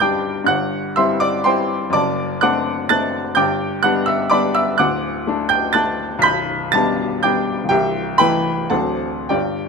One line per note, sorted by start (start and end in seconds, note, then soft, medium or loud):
0.00 0.44 G1 soft
0.00 0.43 G2 medium
0.00 0.49 G3 soft
0.00 0.02 D4 soft
0.00 0.45 D4 soft
0.00 0.50 B4 medium
0.00 0.50 D5 medium
0.00 0.02 G5 medium
0.00 0.45 G5 medium
0.00 0.50 B5 medium
0.00 0.49 D6 medium
0.00 0.47 G6 medium
0.44 1.91 G1 medium
0.44 1.89 G2 medium
0.44 0.94 F#5 medium
0.44 0.96 F#6 medium
0.96 1.43 G3 soft
0.96 1.43 C4 soft
0.96 1.44 E4 soft
0.96 1.20 E5 medium
0.96 1.20 C6 medium
0.96 1.21 E6 medium
1.20 1.45 D5 medium
1.20 1.46 D6 medium
1.44 1.90 G3 soft
1.44 1.90 C4 soft
1.44 1.91 E4 soft
1.44 1.91 C5 medium
1.44 1.90 G5 medium
1.44 1.93 C6 medium
1.90 3.32 F#2 medium
1.90 2.39 D5 medium
1.90 2.39 A5 medium
1.90 2.41 D6 medium
1.95 3.34 F#1 soft
2.41 2.87 A3 soft
2.41 2.87 C4 soft
2.41 2.87 D4 soft
2.41 2.87 F#5 medium
2.41 2.87 D6 medium
2.41 2.88 F#6 medium
2.89 3.34 A3 soft
2.89 3.34 C4 soft
2.89 3.34 D4 soft
2.89 3.34 A5 medium
2.89 3.34 F#6 medium
2.89 3.38 A6 medium
3.35 4.73 G1 soft
3.35 4.73 G2 medium
3.35 3.81 G5 medium
3.35 3.81 D6 medium
3.35 3.83 G6 medium
3.83 4.26 G3 soft
3.83 4.27 B3 soft
3.83 4.27 D4 medium
3.83 4.06 F#5 medium
3.83 4.07 F#6 medium
4.06 4.29 E5 medium
4.06 4.30 E6 medium
4.30 4.74 G3 soft
4.30 4.74 B3 soft
4.30 4.74 D4 medium
4.30 4.53 D5 medium
4.30 4.53 B5 medium
4.30 4.54 D6 medium
4.55 4.77 E5 medium
4.55 4.78 E6 medium
4.78 6.19 D1 medium
4.78 6.19 D2 medium
4.78 5.47 F#5 medium
4.78 5.46 D6 medium
4.78 5.50 F#6 medium
5.27 5.70 A3 soft
5.27 5.71 D4 medium
5.49 5.72 G5 medium
5.49 5.73 G6 medium
5.73 6.19 A3 soft
5.73 6.19 D4 medium
5.73 6.19 A5 medium
5.73 6.19 F#6 medium
5.73 6.22 A6 medium
6.19 7.64 B1 medium
6.19 6.72 B6 loud
6.23 7.67 B0 medium
6.23 6.69 B5 medium
6.23 6.69 G6 medium
6.72 7.19 G3 soft
6.72 7.19 B3 medium
6.72 7.19 D4 medium
6.72 7.20 A5 medium
6.72 7.22 A6 medium
7.23 7.67 G3 soft
7.23 7.67 B3 soft
7.23 7.67 D4 soft
7.23 7.45 G5 medium
7.23 7.45 D6 medium
7.23 7.47 G6 medium
7.64 8.65 C1 medium
7.69 8.68 C2 medium
7.69 8.15 G4 medium
7.69 8.15 E5 medium
7.69 8.17 G5 medium
8.18 8.68 E3 soft
8.18 8.68 A3 soft
8.18 8.68 E4 soft
8.18 8.68 B4 medium
8.18 8.67 G5 medium
8.18 8.71 B5 medium
8.70 9.28 D1 soft
8.70 9.28 D2 soft
8.70 9.26 F#3 soft
8.70 9.26 C4 soft
8.70 9.26 D4 soft
8.70 9.26 A4 soft
8.70 9.25 F#5 soft
8.70 9.29 A5 medium
9.29 9.69 G1 soft
9.29 9.69 G2 soft
9.29 9.69 G4 soft
9.29 9.69 D5 soft
9.29 9.69 G5 medium